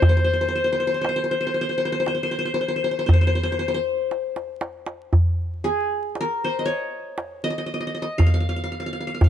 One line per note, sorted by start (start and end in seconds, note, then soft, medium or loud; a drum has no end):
0.00 4.11 C5 medium
0.00 0.09 C5 medium
0.00 darbuka dum loud
0.09 0.17 C5 medium
0.17 0.24 C5 medium
0.24 0.33 C5 medium
0.33 0.41 C5 medium
0.41 0.48 C5 medium
0.48 0.55 C5 medium
0.53 0.64 C5 medium
0.53 darbuka ka soft
0.64 0.72 C5 medium
0.72 0.79 C5 medium
0.80 0.87 C5 medium
0.87 0.94 C5 medium
0.94 1.01 C5 soft
1.01 1.08 C5 medium
1.01 darbuka tek medium
1.09 1.16 C5 medium
1.16 1.23 C5 medium
1.24 1.31 C5 medium
1.31 1.40 C5 medium
1.41 1.46 C5 medium
1.47 1.54 C5 medium
1.54 1.61 C5 soft
1.61 1.69 C5 medium
1.69 1.77 C5 medium
1.78 1.85 C5 medium
1.85 1.92 C5 medium
1.92 1.99 C5 medium
2.00 2.07 C5 medium
2.06 2.14 C5 medium
2.06 darbuka tek medium
2.15 2.23 C5 medium
2.23 2.31 C5 medium
2.31 2.38 C5 medium
2.39 2.45 C5 medium
2.45 2.54 C5 medium
2.54 2.60 C5 medium
2.61 2.68 C5 medium
2.68 2.76 C5 medium
2.76 2.84 C5 medium
2.84 2.91 C5 medium
2.91 2.98 C5 medium
2.99 3.06 C5 medium
3.06 3.13 C5 medium
3.06 darbuka dum medium
3.13 3.21 C5 medium
3.21 3.27 C5 medium
3.27 3.35 C5 medium
3.35 3.43 C5 medium
3.43 3.52 C5 medium
3.52 3.59 C5 medium
3.59 3.68 C5 medium
3.68 3.74 C5 medium
3.74 4.80 C5 medium
4.11 darbuka tek medium
4.36 darbuka ka medium
4.61 darbuka tek medium
4.86 darbuka ka medium
5.13 darbuka dum medium
5.64 6.85 G#4 medium
5.64 darbuka ka soft
6.15 darbuka tek medium
6.21 7.34 A#4 medium
6.44 6.71 C5 medium
6.59 7.43 D#5 medium
6.65 7.67 C#5 medium
7.18 darbuka tek medium
7.44 7.50 D#5 medium
7.50 7.58 D#5 medium
7.58 7.66 D#5 medium
7.66 7.73 D#5 medium
7.74 7.80 D#5 medium
7.80 7.87 D#5 medium
7.87 7.94 D#5 medium
7.95 8.02 D#5 medium
8.02 8.97 D#5 medium
8.18 8.26 F5 medium
8.18 darbuka dum medium
8.26 8.33 F5 medium
8.34 8.40 F5 medium
8.40 8.49 F5 medium
8.49 8.56 F5 medium
8.56 8.63 F5 medium
8.64 8.71 F5 medium
8.71 8.79 F5 soft
8.71 darbuka ka soft
8.80 8.86 F5 medium
8.86 8.93 F5 medium
8.93 9.00 F5 medium
9.00 9.07 F5 soft
9.07 9.14 F5 medium
9.14 9.24 F5 soft
9.21 9.29 F5 medium
9.21 darbuka dum medium